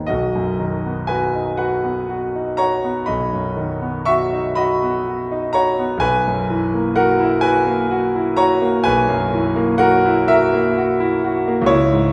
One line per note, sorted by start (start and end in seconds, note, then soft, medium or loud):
0.00 0.11 D#2 soft
0.00 0.11 D#3 soft
0.00 0.11 B3 soft
0.00 0.12 D#4 soft
0.00 0.11 G#4 soft
0.00 0.11 B4 soft
0.07 3.06 B1 medium
0.07 1.06 F#4 medium
0.07 1.09 D#5 medium
0.35 0.75 F#2 soft
0.59 1.00 D#3 soft
0.85 1.25 B3 soft
1.07 1.50 F#4 soft
1.07 1.56 B4 medium
1.07 1.59 G#5 medium
1.35 1.75 D#4 soft
1.57 2.00 F#4 medium
1.57 2.55 B4 medium
1.57 2.59 F#5 medium
1.84 2.24 B3 soft
2.09 2.50 F#4 soft
2.35 2.75 D#4 soft
2.57 3.00 F#4 soft
2.57 3.05 C#5 medium
2.57 3.09 A#5 medium
2.84 3.25 B3 medium
3.06 5.96 B1 medium
3.06 4.04 D#5 medium
3.06 4.07 B5 medium
3.33 3.74 F#2 soft
3.57 3.98 D#3 soft
3.82 4.23 B3 soft
4.05 4.48 F#4 medium
4.05 4.53 E5 medium
4.05 4.56 C#6 loud
4.33 4.72 D#4 medium
4.55 4.97 F#4 medium
4.55 5.51 D#5 medium
4.55 5.54 B5 medium
4.83 5.22 B3 soft
5.07 5.46 F#4 soft
5.32 5.70 D#4 medium
5.53 5.94 F#4 medium
5.53 5.99 C#5 medium
5.53 6.02 A#5 loud
5.79 6.03 B3 medium
5.98 8.78 B1 medium
5.98 6.93 B4 medium
5.98 6.96 G#5 loud
6.27 6.65 F#2 medium
6.50 6.88 E3 medium
6.74 7.11 A#3 soft
6.96 7.35 F#4 medium
6.96 7.40 A#4 medium
6.96 7.43 F#5 loud
7.20 7.57 E4 medium
7.41 7.80 F#4 medium
7.41 8.32 B4 medium
7.41 8.36 G#5 loud
7.67 8.04 A#3 medium
7.91 8.28 F#4 medium
8.16 8.52 E4 medium
8.37 8.76 F#4 medium
8.37 8.81 C#5 medium
8.37 8.84 A#5 loud
8.62 8.99 A#3 medium
8.84 11.67 B1 medium
8.84 9.76 B4 medium
8.84 9.80 G#5 loud
9.09 9.47 F#2 medium
9.34 9.71 E3 medium
9.56 9.94 A#3 medium
9.78 10.19 F#4 medium
9.78 10.24 A#4 medium
9.78 10.27 F#5 loud
10.05 10.43 E4 medium
10.28 10.67 F#4 medium
10.28 11.66 A#4 medium
10.28 11.70 E5 loud
10.53 10.91 A#3 medium
10.78 11.14 F#4 medium
11.00 11.38 E4 medium
11.24 11.62 F#4 medium
11.48 11.71 A#3 medium
11.62 12.12 C#2 medium
11.66 12.12 E4 medium
11.66 12.12 C#5 loud
11.93 12.12 G#2 medium